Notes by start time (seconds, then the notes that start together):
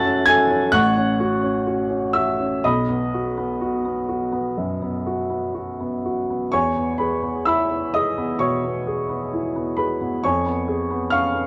Already playing: F#2 C#4 F#4 A4 E5 A5 C#6 E6 F#6 A6
0.04 C#4
0.26 A4 G#5 G#6
0.50 C#4
0.72 A1 F#5 C#6 F#6
0.97 C#4
1.20 F#4
1.43 C#4
1.67 F#4
1.89 C#4
2.13 F#4 E5 E6
2.40 C#4
2.64 B1 D#5 B5 D#6
2.89 B3
3.14 F#4
3.38 B3
3.61 F#4
3.85 B3
4.09 F#4
4.32 B3
4.57 F#2
4.82 B3
5.07 F#4
5.30 B3
5.55 F#4
5.80 B3
6.05 F#4
6.30 B3
6.52 E2 C#5 G#5 C#6
6.76 B3
6.98 G#4 B4 B5
7.23 B3
7.45 E4 E5 B5 E6
7.70 B3
7.94 G#4 D#5 D#6
8.18 B3
8.39 B2 C#5 C#6
8.64 B3
8.87 G#4
9.09 B3
9.33 E4
9.56 B3
9.77 G#4 B4 B5
10.01 B3
10.24 F2 C#5 G#5 C#6
10.46 B3
10.68 G#4
10.91 B3
11.10 C#4 F5 C#6 F6
11.34 B3